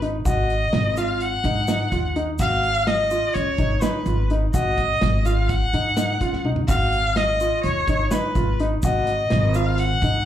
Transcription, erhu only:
0.28 0.99 D#5 medium
0.97 1.23 F5 medium
1.21 2.16 F#5 loud
2.40 2.88 F5 loud
2.87 3.35 D#5 medium
3.34 3.83 C#5 loud
3.82 4.30 B4 medium
4.54 5.27 D#5 medium
5.25 5.51 F5 medium
5.49 6.45 F#5 loud
6.67 7.18 F5 loud
7.16 7.63 D#5 medium
7.64 8.13 C#5 medium
8.11 8.59 B4 medium
8.83 9.57 D#5 medium
9.55 9.80 F5 medium
9.79 10.25 F#5 loud

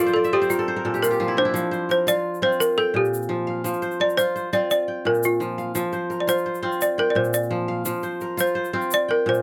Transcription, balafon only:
0.00 0.15 F4 medium
0.14 0.32 A4 medium
0.33 0.51 G4 medium
0.50 0.66 F4 medium
1.03 1.39 A#4 medium
1.38 1.87 C5 loud
1.91 2.09 C5 loud
2.08 2.44 D5 loud
2.43 2.61 C5 loud
2.60 2.78 A#4 medium
2.78 2.96 A4 loud
2.96 3.45 G4 medium
4.01 4.19 D5 loud
4.17 4.54 C5 loud
4.53 4.69 D5 loud
4.71 5.07 D5 medium
5.07 5.24 A#4 medium
5.25 6.08 F4 medium
6.20 6.28 D5 medium
6.29 6.82 C5 loud
6.82 6.99 D5 medium
6.99 7.12 A#4 medium
7.10 7.15 D5 medium
7.16 7.34 C5 medium
7.34 7.50 D5 medium
8.40 8.93 C5 medium
8.94 9.10 D5 loud
9.11 9.27 A#4 medium
9.29 9.42 C5 medium

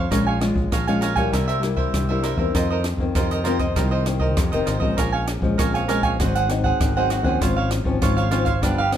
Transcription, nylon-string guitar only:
0.11 0.69 A#2 medium
0.11 0.37 G#3 medium
0.11 0.37 C#4 medium
0.11 0.37 F4 medium
0.41 0.70 G#3 medium
0.41 0.70 C#4 medium
0.41 0.70 F4 medium
0.72 1.30 F3 medium
0.88 1.13 G#3 medium
0.88 1.13 C#4 medium
0.88 1.14 F4 medium
1.17 1.58 G3 medium
1.17 1.58 A#3 medium
1.17 1.58 E4 medium
1.33 1.91 C3 medium
1.63 2.04 G3 medium
1.63 2.04 A#3 medium
1.63 2.05 E4 medium
1.94 2.52 G2 soft
2.10 2.35 G3 medium
2.10 2.35 A#3 medium
2.10 2.36 E4 medium
2.39 2.80 D#3 medium
2.39 2.80 A#3 medium
2.39 2.80 C4 medium
2.55 3.13 F2 medium
3.00 3.41 D#3 medium
3.00 3.41 A#3 medium
3.00 3.41 C4 medium
3.16 3.74 C3 medium
3.46 3.64 D#3 medium
3.46 3.64 A#3 medium
3.46 3.65 C4 medium
3.77 4.34 F2 medium
3.77 4.02 D#3 medium
3.77 4.02 A#3 medium
3.77 4.03 C4 medium
4.06 4.35 D#3 medium
4.06 4.35 A#3 medium
4.06 4.35 C4 medium
4.38 4.95 C3 medium
4.53 4.78 D#3 medium
4.53 4.79 A#3 medium
4.53 4.79 C4 medium
4.82 5.38 F3 medium
4.82 5.38 G#3 medium
4.82 5.39 C#4 medium
4.98 5.56 A#2 medium
5.42 5.84 F3 medium
5.42 5.84 G#3 medium
5.42 5.84 C#4 medium
5.59 6.17 F2 medium
5.89 6.15 F3 medium
5.89 6.15 G#3 medium
5.89 6.15 C#4 medium
6.20 6.78 G#2 medium
6.20 6.46 F#3 medium
6.20 6.46 C4 medium
6.20 6.46 D#4 medium
6.49 6.91 F#3 soft
6.49 6.91 C4 medium
6.49 6.91 D#4 medium
6.80 7.38 D#3 soft
6.96 7.21 F#3 medium
6.96 7.22 C4 medium
6.96 7.22 D#4 medium
7.24 7.81 F3 medium
7.24 7.81 C4 medium
7.24 7.82 C#4 medium
7.41 7.99 G#2 medium
7.85 8.27 F3 medium
7.85 8.27 C4 medium
7.85 8.27 C#4 medium
8.02 8.60 G#2 medium
8.31 8.50 F3 medium
8.31 8.50 C4 medium
8.31 8.50 C#4 medium
8.62 8.97 G2 medium
8.62 8.81 F3 medium
8.62 8.81 B3 medium
8.62 8.81 D4 medium
8.92 8.97 F3 medium
8.92 8.97 B3 medium
8.92 8.97 D4 medium

